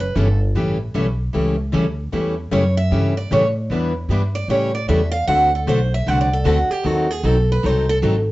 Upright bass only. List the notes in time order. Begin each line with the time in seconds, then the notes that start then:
Already playing: F#1
0.16 G1
0.55 A1
0.95 B1
1.34 C#2
1.74 D2
2.13 E2
2.52 F#2
2.92 G2
3.31 A2
3.70 E2
4.09 G2
4.48 A2
4.89 E2
5.28 D2
5.67 B1
6.06 C2
6.45 D2
6.69 muted upright bass stroke
6.85 D#2
7.23 B1
7.64 C2
8.02 G#1